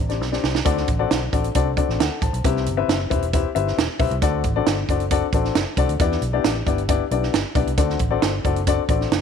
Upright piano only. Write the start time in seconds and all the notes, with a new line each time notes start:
Already playing: C3
0.09 C4 D4 G4 D5
0.32 C4 D4 G4 D5
0.65 D3 C4 D4 F#4 A4 D5
0.99 C4 D4 F#4 A4 D5
1.32 C4 D4 F#4 A4 D5
1.55 C4 D4 F#4 A4 D5
1.77 C4 D4 F#4 A4 D5
2.00 A4 F#5
2.22 C5 A5
2.45 C3 C4 E4 G4 B4 E5
2.77 C4 E4 G4 B4 E5
3.10 C4 E4 G4 B4 E5
3.33 C4 E4 G4 B4 E5
3.55 C4 E4 G4 B4 E5
3.99 C4 E4 G4 B4 E5
4.22 D3 C4 D4 F#4 A4 D5
4.56 C4 D4 F#4 A4 D5
4.90 C4 D4 F#4 A4 D5
5.11 C4 D4 F#4 A4 D5
5.34 C4 D4 F#4 A4 D5
5.77 C4 D4 F#4 A4 D5
6.00 E3 B3 D4 E4 G4 D5
6.33 B3 D4 E4 G4 D5
6.66 B3 D4 E4 G4 D5
6.89 B3 D4 E4 G4 D5
7.11 B3 D4 E4 G4 D5
7.55 B3 D4 E4 G4 D5
7.77 D3 C4 D4 F#4 A4 D5
8.11 C4 D4 F#4 A4 D5
8.45 C4 D4 F#4 A4 D5
8.67 C4 D4 F#4 A4 D5
8.89 C4 D4 F#4 A4 D5